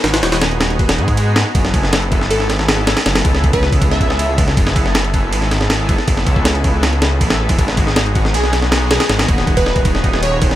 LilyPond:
<<
  \new Staff \with { instrumentName = "Digital synth lead" } { \time 4/4 \key fis \dorian \tempo 4 = 159 r1 | r2 a'8 r4. | r4 r16 b'8 r8 e''4. r16 | r1 |
r1 | r2 gis'8 r4 gis'16 gis'16 | r4 r16 b'8 r4 r16 cis''4 | }
  \new Staff \with { instrumentName = "Analog synth pad" } { \time 4/4 \key fis \dorian <b dis' fis' gis'>4. <b dis' fis' gis'>4 <b dis' fis' gis'>16 <b dis' fis' gis'>4~ <b dis' fis' gis'>16 | <b e' gis' a'>4. <b e' gis' a'>4 <b e' gis' a'>4. | <b e' gis' a'>4. <b e' gis' a'>2~ <b e' gis' a'>8 | <b e' gis' a'>4. <b e' gis' a'>4 <b e' gis' a'>4. |
<b e' gis' a'>4. <b e' gis' a'>4 <b e' gis' a'>16 <b e' gis' a'>4~ <b e' gis' a'>16 | <b dis' fis' gis'>4. <b dis' fis' gis'>4 <b dis' fis' gis'>4. | <b dis' fis' gis'>4. <b dis' fis' gis'>2~ <b dis' fis' gis'>8 | }
  \new Staff \with { instrumentName = "Detuned saw bass" } { \clef bass \time 4/4 \key fis \dorian gis,,8 dis,,2 gis,4~ gis,16 r16 | fis,,2 gis,,4.~ gis,,16 r16 | fis,,8 cis,2.~ cis,8 | fis,,2 gis,,4.~ gis,,16 r16 |
fis,,8 cis,2~ cis,8 a,,8. e,,16 | gis,,2 b,,4.~ b,,16 r16 | gis,,8 dis,,2.~ dis,,8 | }
  \new DrumStaff \with { instrumentName = "Drums" } \drummode { \time 4/4 <cymr sn>16 <cymr sn>16 <cymr sn>16 <cymr sn>16 <cymr sn>16 cymr16 <cymr sn>16 cymr16 <bd cymr>16 <cymr sn>16 cymr16 <bd cymr>16 cymr8 <cymr sn>8 | <bd cymr>16 sn16 <bd cymr>16 sn16 <cymr sn>16 cymr16 <bd cymr>16 sn16 cymr16 sn16 <cymr sn>16 sn16 <cymr sn>8 <cymr sn>16 <cymr sn>16 | <cymr sn>16 <cymr sn>16 <bd cymr>16 sn16 <bd cymr>16 <bd cymr>16 sn16 <bd cymr>16 <bd cymr>16 sn16 <bd cymr>16 sn16 cymr8 <bd cymr>16 sn16 | <bd cymr>16 sn16 <bd cymr>16 sn16 <cymr sn>16 cymr16 <bd cymr>8 cymr16 sn16 <cymr sn>16 sn16 <cymr sn>8 <bd cymr>16 sn16 |
<bd cymr>16 sn16 <bd cymr>16 bd16 <cymr sn>16 cymr16 <bd cymr>8 <cymr sn>16 cymr16 <cymr sn>8 <bd cymr>16 <cymr sn>8 <bd cymr>16 | <bd cymr>16 sn16 <bd cymr>16 sn16 <cymr sn>16 cymr16 <bd cymr>16 sn16 cymr16 sn16 <cymr sn>16 sn16 <cymr sn>8 <cymr sn>16 <cymr sn>16 | <cymr sn>16 <cymr sn>16 <bd cymr>16 sn16 <bd cymr>16 <bd cymr>16 sn16 <bd cymr>16 <bd cymr>16 sn16 <bd cymr>16 sn16 cymr8 <bd cymr>16 sn16 | }
>>